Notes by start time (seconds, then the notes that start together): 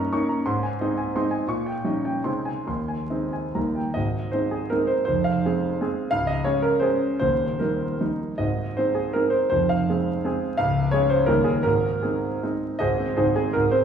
Already playing: G2 A#3 C#4 D#4 D#5 A#5 C#6
0.12 A#3 C#4 D#4 C#6
0.29 A#5
0.46 G#2 C6
0.63 G#5
0.81 G#3 C4 D#4 D#5
0.98 G#5
1.15 G#3 C4 D#4 C6
1.31 G#5
1.48 A#2 C#6
1.66 G5
1.84 G3 C#4 D#4 D#5
2.05 G5
2.24 C3 G#3 C4 D#4 C6
2.45 G#5
2.67 D#2 C6
2.88 G#5
3.10 G#3 C4 D#4 D#5
3.33 G#5
3.55 D#2 G3 A#3 D#4 A#5
3.75 G5
3.94 G#1 G#2 D#5
4.32 G#3 C4 D#4 C5
4.51 G#4
4.70 G#3 C4 D#4 A#4
4.87 C5
5.05 F1 F2 C5
5.24 F5
5.45 G#3 C4 G#4
5.81 G#3 C4 G#4
6.11 C#1 C#2 F5
6.27 D#5
6.44 G#3 C#4 G#4 C#5
6.62 A#4
6.80 G#3 C#4 G#4 C5
7.19 D#1 D#2 C5
7.59 G3 A#3 D#4 A#4
8.01 G3 A#3 D#4
8.38 G#1 G#2 D#5
8.77 G#3 C4 D#4 C5
8.95 G#4
9.13 G#3 C4 D#4 A#4
9.30 C5
9.50 F1 F2 C5
9.69 F5
9.90 G#3 C4 G#4
10.25 G#3 C4 G#4
10.57 C#1 C#2 F5
10.91 G#3 C#4 G#4 C#5
11.10 C5
11.26 D#1 D#2 G3 A#3 D#4 A#4
11.44 G#4
11.63 G#1 G#2 A#4
12.02 G#3 C4 D#4 G#4
12.43 G#3 C4 D#4
12.79 G#1 G#2 G#4 C5 D#5
12.99 G#3 C4
13.17 G#1 G#2 D#4 G#4 C5
13.36 G#3 C4 G#4
13.53 G#1 G#2 A#4
13.71 G#3 C4 C5